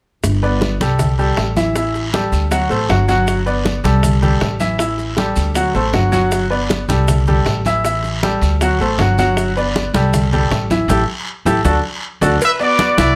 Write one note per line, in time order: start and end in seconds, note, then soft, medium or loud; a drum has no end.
0.24 0.77 G1 medium
0.24 high bongo medium
0.24 high conga soft
0.24 long guiro medium
0.24 maracas medium
0.43 0.74 B3 medium
0.43 0.74 B4 medium
0.43 0.74 D5 medium
0.43 high conga soft
0.43 maracas soft
0.61 high bongo medium
0.61 high conga medium
0.61 short guiro medium
0.61 maracas soft
0.80 1.34 C2 medium
0.80 1.12 G3 medium
0.80 1.12 G4 medium
0.80 1.13 A4 medium
0.80 high conga medium
0.80 short guiro medium
0.80 maracas medium
0.99 high bongo medium
0.99 high conga soft
0.99 low conga medium
0.99 long guiro medium
0.99 maracas medium
1.18 1.50 G3 medium
1.18 1.50 G4 medium
1.18 1.50 A4 medium
1.18 high conga soft
1.18 maracas soft
1.37 2.27 A1 medium
1.37 high bongo medium
1.37 low bongo medium
1.37 high conga soft
1.37 short guiro medium
1.37 maracas soft
1.56 1.72 E3 medium
1.56 1.72 E4 medium
1.56 1.73 E5 medium
1.56 high conga medium
1.56 short guiro medium
1.56 maracas medium
1.75 2.07 E3 medium
1.75 2.07 E4 medium
1.75 2.07 E5 medium
1.75 high bongo medium
1.75 high conga soft
1.75 long guiro medium
1.75 maracas medium
1.95 high bongo soft
1.95 high conga soft
1.95 maracas soft
2.13 2.45 G3 medium
2.13 2.45 G4 medium
2.13 2.45 A4 medium
2.13 high bongo medium
2.13 high conga loud
2.13 short guiro medium
2.13 maracas soft
2.32 2.68 D2 medium
2.32 high conga soft
2.32 short guiro medium
2.32 maracas medium
2.51 2.67 F#3 medium
2.51 2.67 F#4 medium
2.51 2.68 F#5 medium
2.51 high bongo medium
2.51 long guiro medium
2.51 maracas medium
2.70 2.88 A1 medium
2.70 2.86 A3 medium
2.70 2.86 A4 medium
2.70 2.86 C5 medium
2.70 high bongo soft
2.70 high conga soft
2.70 maracas soft
2.89 3.79 G1 medium
2.89 3.05 F#3 medium
2.89 3.05 F#4 medium
2.89 3.05 F#5 medium
2.89 high bongo medium
2.89 low bongo medium
2.89 high conga medium
2.89 short guiro medium
2.89 maracas soft
3.08 3.40 F#3 medium
3.08 3.40 F#4 medium
3.08 3.40 F#5 medium
3.08 high bongo soft
3.08 high conga medium
3.08 short guiro medium
3.08 maracas medium
3.27 high bongo medium
3.27 long guiro medium
3.27 maracas medium
3.46 3.78 B3 medium
3.46 3.78 B4 medium
3.46 3.78 D5 medium
3.46 high conga soft
3.46 maracas soft
3.65 high bongo medium
3.65 high conga loud
3.65 short guiro medium
3.65 maracas soft
3.84 4.37 C2 medium
3.84 4.16 G3 medium
3.84 4.16 G4 medium
3.84 4.16 A4 medium
3.84 high conga medium
3.84 short guiro medium
3.84 maracas medium
4.03 high bongo medium
4.03 high conga soft
4.03 low conga medium
4.03 long guiro medium
4.03 maracas medium
4.22 4.54 G3 medium
4.22 4.54 G4 medium
4.22 4.54 A4 medium
4.22 high conga soft
4.22 low conga medium
4.22 maracas soft
4.41 5.31 A1 medium
4.41 high bongo medium
4.41 low bongo medium
4.41 high conga soft
4.41 short guiro medium
4.41 maracas soft
4.60 4.76 E3 medium
4.60 4.76 E4 medium
4.60 4.76 E5 medium
4.60 high conga medium
4.60 short guiro medium
4.60 maracas medium
4.78 5.11 E3 medium
4.78 5.11 E4 medium
4.78 5.11 E5 medium
4.78 high bongo medium
4.78 high conga soft
4.78 long guiro medium
4.78 maracas medium
4.98 high bongo soft
4.98 high conga soft
4.98 maracas soft
5.17 5.49 G3 medium
5.17 5.49 G4 medium
5.17 5.49 A4 medium
5.17 high bongo medium
5.17 high conga medium
5.17 short guiro medium
5.17 maracas soft
5.36 5.72 D2 medium
5.36 high conga soft
5.36 short guiro medium
5.36 maracas medium
5.54 5.71 F#3 medium
5.54 5.72 F#4 medium
5.54 5.72 F#5 medium
5.54 high bongo medium
5.54 high conga soft
5.54 long guiro medium
5.54 maracas medium
5.74 5.92 A1 medium
5.74 5.90 A3 medium
5.74 5.91 A4 medium
5.74 5.91 C5 medium
5.74 high bongo soft
5.74 high conga soft
5.74 maracas soft
5.93 6.83 G1 medium
5.93 6.09 F#3 medium
5.93 6.10 F#4 medium
5.93 6.10 F#5 medium
5.93 high bongo medium
5.93 low bongo medium
5.93 high conga medium
5.93 short guiro medium
5.93 maracas soft
6.12 6.44 F#3 medium
6.12 6.44 F#4 medium
6.12 6.44 F#5 medium
6.12 high bongo soft
6.12 high conga medium
6.12 short guiro medium
6.12 maracas medium
6.32 high bongo medium
6.32 high conga soft
6.32 long guiro medium
6.32 maracas medium
6.50 6.82 B3 medium
6.50 6.82 B4 medium
6.50 6.82 D5 medium
6.50 high conga soft
6.50 maracas soft
6.70 high bongo medium
6.70 high conga medium
6.70 short guiro medium
6.70 maracas soft
6.88 7.42 C2 medium
6.88 7.20 G3 medium
6.88 7.20 G4 medium
6.88 7.21 A4 medium
6.88 high conga medium
6.88 short guiro medium
6.88 maracas medium
7.08 high bongo medium
7.08 high conga soft
7.08 low conga medium
7.08 long guiro medium
7.08 maracas medium
7.27 7.59 G3 medium
7.27 7.59 G4 medium
7.27 7.59 A4 medium
7.27 high conga soft
7.27 low conga medium
7.27 maracas soft
7.46 8.36 A1 medium
7.46 high bongo medium
7.46 low bongo medium
7.46 high conga soft
7.46 short guiro medium
7.46 maracas soft
7.65 7.81 E3 medium
7.65 7.82 E4 medium
7.65 7.82 E5 medium
7.65 high conga medium
7.65 short guiro medium
7.65 maracas medium
7.84 8.16 E3 medium
7.84 8.16 E4 medium
7.84 8.17 E5 medium
7.84 high bongo medium
7.84 high conga soft
7.84 long guiro medium
7.84 maracas medium
8.03 high bongo soft
8.03 high conga soft
8.03 maracas soft
8.23 8.54 G3 medium
8.23 8.54 G4 medium
8.23 8.54 A4 medium
8.23 high bongo medium
8.23 high conga medium
8.23 short guiro medium
8.23 maracas soft
8.42 8.77 D2 medium
8.42 high conga soft
8.42 short guiro medium
8.42 maracas medium
8.61 8.77 F#3 medium
8.61 8.77 F#4 medium
8.61 8.78 F#5 medium
8.61 high bongo medium
8.61 high conga soft
8.61 long guiro medium
8.61 maracas medium
8.79 8.97 A1 medium
8.79 8.96 A3 medium
8.79 8.96 A4 medium
8.79 8.96 C5 medium
8.79 high bongo soft
8.79 high conga soft
8.79 maracas soft
8.98 9.88 G1 medium
8.98 9.15 F#3 medium
8.98 9.15 F#4 medium
8.98 9.16 F#5 medium
8.98 high bongo medium
8.98 low bongo medium
8.98 high conga medium
8.98 short guiro medium
8.98 maracas soft
9.18 9.50 F#3 medium
9.18 9.50 F#4 medium
9.18 9.50 F#5 medium
9.18 high bongo soft
9.18 high conga medium
9.18 short guiro medium
9.18 maracas medium
9.37 high bongo medium
9.37 high conga soft
9.37 long guiro medium
9.37 maracas medium
9.57 9.88 B3 medium
9.57 9.88 B4 medium
9.57 9.88 D5 medium
9.57 high conga soft
9.57 maracas soft
9.75 high bongo medium
9.75 high conga medium
9.75 short guiro medium
9.75 maracas soft
9.93 10.47 C2 medium
9.93 10.26 G3 medium
9.93 10.26 G4 medium
9.93 10.26 A4 medium
9.93 high conga loud
9.93 short guiro medium
9.93 maracas medium
10.14 high bongo medium
10.14 high conga soft
10.14 low conga medium
10.14 long guiro medium
10.14 maracas medium
10.32 10.64 G3 medium
10.32 10.64 G4 medium
10.32 10.64 A4 medium
10.32 high conga soft
10.32 low conga medium
10.32 maracas soft
10.51 10.86 A1 medium
10.51 high bongo medium
10.51 low bongo medium
10.51 high conga soft
10.51 short guiro medium
10.51 maracas soft
10.70 10.86 E3 medium
10.70 10.86 E4 medium
10.70 10.86 E5 medium
10.70 high conga loud
10.70 short guiro medium
10.70 maracas medium
10.88 11.03 A1 loud
10.88 11.02 E4 medium
10.88 11.02 G4 loud
10.88 11.02 A4 medium
10.88 low bongo medium
10.88 high conga loud
10.88 long guiro medium
10.88 maracas loud
11.45 11.60 A1 medium
11.45 11.58 E4 loud
11.45 11.58 G4 loud
11.45 11.58 A4 loud
11.45 low bongo medium
11.45 high conga loud
11.45 long guiro medium
11.45 maracas medium
11.65 11.79 D2 medium
11.65 11.77 D4 loud
11.65 11.77 F#4 medium
11.65 11.77 A4 loud
11.65 low bongo loud
11.65 high conga medium
11.65 long guiro medium
11.65 maracas loud
12.21 12.36 D2 loud
12.21 12.34 D4 loud
12.21 12.34 F#4 loud
12.21 12.34 A4 loud
12.21 low bongo loud
12.21 high conga loud
12.21 long guiro medium
12.21 maracas loud
12.41 12.61 B4 medium
12.41 12.52 E5 loud
12.41 cowbell loud
12.41 high conga soft
12.41 long guiro medium
12.41 maracas loud
12.60 12.91 B3 medium
12.60 13.14 F#4 medium
12.60 12.91 B4 medium
12.60 13.14 B4 medium
12.60 12.91 D5 medium
12.60 12.97 D5 loud
12.60 high conga soft
12.60 maracas soft
12.79 cowbell medium
12.79 high conga loud
12.79 short guiro medium
12.79 maracas soft
12.97 13.15 C2 medium
12.97 13.15 E3 medium
12.97 13.15 E4 loud
12.97 13.15 D5 loud
12.97 13.15 E5 loud
12.97 cowbell medium
12.97 high conga loud
12.97 short guiro medium
12.97 maracas medium